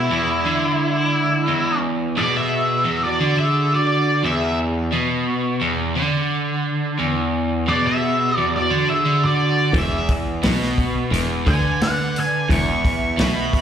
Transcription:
Already playing: G#3 E4
0.11 E2
0.45 D3
1.47 E2
2.17 B2 G#4 D5
2.36 G#4 E5
2.85 E2
3.04 F#4 D5
3.20 D3
3.39 G#4 E5
3.73 F#4 D5
4.24 E2 G#4 E5
4.92 B2
5.61 E2
5.95 D3
6.99 E2
7.67 B2 G#4 D5
7.87 G#4 E5
8.36 E2 F#4 D5
8.56 F#4 D5
8.71 D3
8.90 G#4 E5
9.06 D3
9.24 F#4 D5
9.74 E1 E2 G#4, kick, open hi-hat
9.78 E5
10.09 kick, open hi-hat
10.43 B1 B2, snare, open hi-hat
10.62 snare
10.78 kick, open hi-hat
11.12 E1 E2, open hi-hat
11.46 D2 D3 B4 G#5, kick, open hi-hat
11.81 B4 F#5, snare, open hi-hat
12.16 B4 G#5, open hi-hat
12.50 E1 E2 E5 C#6, kick, open hi-hat
12.85 kick, open hi-hat
13.18 B1 B2 E5 B5, snare, open hi-hat
13.53 kick, open hi-hat

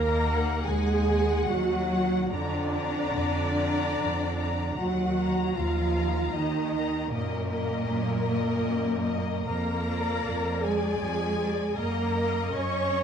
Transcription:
Already playing: D#2 A#3 A#4 A#5
0.24 F#5
0.66 D#2 G#3 G#4 G#5
1.08 F#5
1.49 D#2 F#3 F#4 F#5
1.91 F#5
2.30 F2 D3 D4 D5 A#5
2.73 A#5
3.15 F2
3.57 A#5
3.98 F2
4.40 A#5
4.78 D#2 F#3 F#4 F#5
5.19 A#5
5.56 D#2 F3 F4 F5
5.96 A#5
6.34 D#2 D#3 D#4 D#5
6.74 A#5
7.10 F#2 A#2 A#3 A#4 D#5
7.51 D#5
7.87 F#2
8.25 D#5
8.62 F#2
9.04 D#5
9.47 F2 A#3 A#4 A#5
9.88 D5
10.25 F2
10.62 G#3 G#4 D5 G#5
11.01 F2
11.39 D5
11.77 F#2 A#3 A#4 D#5 A#5
12.16 D#5
12.52 F#2 C#4 C#5 C#6
12.92 D#5

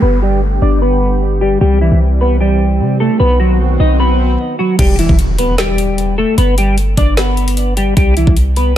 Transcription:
Already playing: B3 G4, downlifter
0.02 G1 D3 G3 B3 B4
0.22 G3 G4
0.62 G1 D4 D5
0.82 B3 B4
1.41 G3 G4
1.61 C2 E3 G3 C4 G4, swell
1.81 E3 E4
1.91 C2
2.21 B3 B4
2.40 G3 G4
2.80 C3
3.00 A3 A4
3.20 B1 D#3 F#3 B3 F#4 B4
3.40 F#3 F#4
3.80 B1 D#4 D#5
4.00 B3 B4
4.59 F#3 F#4
4.79 E1 G3 G4, kick, closed hi-hat, crash, impact
4.99 E3 E4, closed hi-hat
5.09 E1, kick
5.19 closed hi-hat
5.38 B3 B4, closed hi-hat
5.58 G3 G4, snare, closed hi-hat
5.78 closed hi-hat
5.98 closed hi-hat
6.18 A3 A4
6.38 G1 B3 B4, closed hi-hat
6.58 G3 G4, closed hi-hat
6.78 closed hi-hat
6.97 G1 D4 D5, kick, closed hi-hat
7.17 B3 B4, snare, closed hi-hat
7.37 closed hi-hat
7.48 closed hi-hat
7.57 closed hi-hat
7.77 G3 G4, closed hi-hat
7.97 C2 G3 G4, kick, closed hi-hat
8.17 E3 E4, closed hi-hat
8.27 C2, kick
8.37 closed hi-hat
8.56 B3 B4, closed hi-hat

